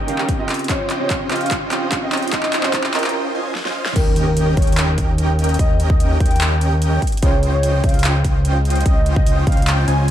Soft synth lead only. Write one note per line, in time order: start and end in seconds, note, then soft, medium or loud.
0.69 0.90 C#5 loud
1.00 1.21 C#5 loud
1.31 1.52 F5 medium
2.33 2.65 D#5 loud
2.63 2.84 C5 loud
2.94 3.14 A#4 medium
3.96 4.17 A#4 loud
4.27 4.47 A#4 loud
4.57 4.78 C#5 loud
5.59 5.80 D#5 loud
5.90 6.11 D#5 loud
6.21 6.41 G5 loud
7.22 7.43 C#5 loud
7.53 7.85 C#5 loud
7.84 8.05 F5 loud
8.86 9.07 D#5 loud
9.16 9.37 D#5 loud
9.47 9.68 F5 loud